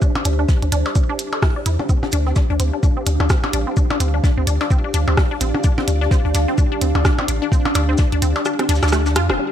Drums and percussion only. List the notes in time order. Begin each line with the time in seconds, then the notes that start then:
0.02 kick, shaker
0.15 closed hi-hat, percussion blips
0.25 closed hi-hat, shaker
0.48 kick, snare, shaker
0.62 closed hi-hat
0.72 closed hi-hat, shaker
0.85 snare, percussion blips
0.95 kick, shaker
1.19 closed hi-hat, shaker
1.33 percussion blips
1.42 kick, cross-stick, snare, open hi-hat
1.66 closed hi-hat, shaker
1.79 percussion blips
1.89 kick, shaker
2.03 snare, percussion blips
2.12 closed hi-hat, shaker
2.26 snare
2.36 kick, snare, shaker
2.50 closed hi-hat
2.60 closed hi-hat, shaker
2.83 kick, shaker
3.06 closed hi-hat, shaker
3.20 percussion blips
3.30 kick, cross-stick, snare, shaker
3.44 percussion blips
3.53 closed hi-hat, shaker
3.77 kick, shaker
3.90 closed hi-hat, percussion blips
4.00 closed hi-hat, shaker
4.24 kick, snare, shaker
4.47 closed hi-hat, shaker
4.61 snare, percussion blips
4.70 kick, shaker
4.94 closed hi-hat, shaker
5.08 percussion blips
5.17 kick, cross-stick, snare, open hi-hat
5.41 closed hi-hat, shaker
5.54 percussion blips
5.64 kick, shaker
5.78 snare, percussion blips
5.88 closed hi-hat, shaker
6.02 snare
6.11 kick, snare, shaker
6.25 closed hi-hat
6.34 snare, closed hi-hat, shaker
6.48 closed hi-hat
6.58 kick, shaker
6.81 closed hi-hat, shaker
6.95 percussion blips
7.05 kick, cross-stick, snare, shaker
7.19 percussion blips
7.28 closed hi-hat, shaker
7.52 kick, shaker
7.65 closed hi-hat, percussion blips
7.75 closed hi-hat, percussion blips, shaker
7.97 kick, snare, shaker
8.12 closed hi-hat
8.22 closed hi-hat, shaker
8.36 snare, percussion blips
8.45 cross-stick, shaker
8.59 cross-stick, closed hi-hat
8.69 snare, closed hi-hat, shaker
8.75 snare, shaker
8.82 cross-stick, snare, percussion blips, shaker
8.87 snare, shaker
8.92 cross-stick, snare, shaker
9.06 snare, shaker
9.15 cross-stick, closed hi-hat, shaker
9.29 cross-stick, snare, percussion blips